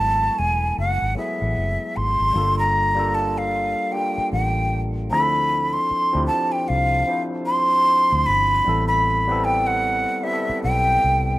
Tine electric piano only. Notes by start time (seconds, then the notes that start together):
Already playing: F#3 G#3 A3 B3 E4 G#4 A4
1.14 F#3 A3 B3 E4
1.19 G#4
2.33 G3 A#3 D4 F4
2.37 A4
2.95 G3 A#3 D4 F4
2.99 A4
3.91 G3 A#3 D4 F4 G4
5.10 F3 C4 D4 E4 G#4
5.20 A4
6.13 F3 C4 D4 E4
6.17 G4
7.07 F3 C4 D4 E4 C5
8.65 G3 B3 C4 E4
8.69 A4
9.28 G3 B3 C4 E4
9.32 A4
10.23 G3 B3 C4 E4 G4
10.33 A4